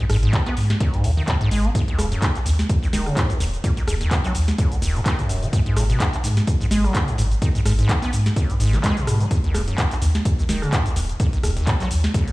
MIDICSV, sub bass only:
0, 0, Header, 1, 2, 480
1, 0, Start_track
1, 0, Tempo, 472441
1, 1778, Time_signature, 4, 2, 24, 8
1, 12519, End_track
2, 0, Start_track
2, 0, Title_t, "Sub bass"
2, 0, Program_c, 0, 38
2, 97, Note_on_c, 0, 32, 98
2, 274, Note_off_c, 0, 32, 0
2, 577, Note_on_c, 0, 44, 98
2, 754, Note_off_c, 0, 44, 0
2, 1057, Note_on_c, 0, 39, 97
2, 1234, Note_off_c, 0, 39, 0
2, 1537, Note_on_c, 0, 32, 89
2, 1714, Note_off_c, 0, 32, 0
2, 2017, Note_on_c, 0, 27, 100
2, 2194, Note_off_c, 0, 27, 0
2, 2498, Note_on_c, 0, 39, 98
2, 2674, Note_off_c, 0, 39, 0
2, 2978, Note_on_c, 0, 27, 95
2, 3154, Note_off_c, 0, 27, 0
2, 3458, Note_on_c, 0, 27, 80
2, 3634, Note_off_c, 0, 27, 0
2, 3938, Note_on_c, 0, 27, 98
2, 4114, Note_off_c, 0, 27, 0
2, 4418, Note_on_c, 0, 39, 99
2, 4594, Note_off_c, 0, 39, 0
2, 4899, Note_on_c, 0, 27, 94
2, 5074, Note_off_c, 0, 27, 0
2, 5379, Note_on_c, 0, 27, 81
2, 5554, Note_off_c, 0, 27, 0
2, 5858, Note_on_c, 0, 32, 96
2, 6034, Note_off_c, 0, 32, 0
2, 6339, Note_on_c, 0, 44, 97
2, 6514, Note_off_c, 0, 44, 0
2, 6819, Note_on_c, 0, 32, 97
2, 6994, Note_off_c, 0, 32, 0
2, 7298, Note_on_c, 0, 32, 79
2, 7474, Note_off_c, 0, 32, 0
2, 7779, Note_on_c, 0, 32, 98
2, 7954, Note_off_c, 0, 32, 0
2, 8258, Note_on_c, 0, 44, 98
2, 8434, Note_off_c, 0, 44, 0
2, 8737, Note_on_c, 0, 32, 89
2, 8914, Note_off_c, 0, 32, 0
2, 9217, Note_on_c, 0, 44, 87
2, 9394, Note_off_c, 0, 44, 0
2, 9697, Note_on_c, 0, 27, 96
2, 9874, Note_off_c, 0, 27, 0
2, 10178, Note_on_c, 0, 39, 96
2, 10354, Note_off_c, 0, 39, 0
2, 10657, Note_on_c, 0, 27, 96
2, 10834, Note_off_c, 0, 27, 0
2, 11137, Note_on_c, 0, 27, 80
2, 11313, Note_off_c, 0, 27, 0
2, 11617, Note_on_c, 0, 27, 98
2, 11794, Note_off_c, 0, 27, 0
2, 12098, Note_on_c, 0, 39, 96
2, 12274, Note_off_c, 0, 39, 0
2, 12519, End_track
0, 0, End_of_file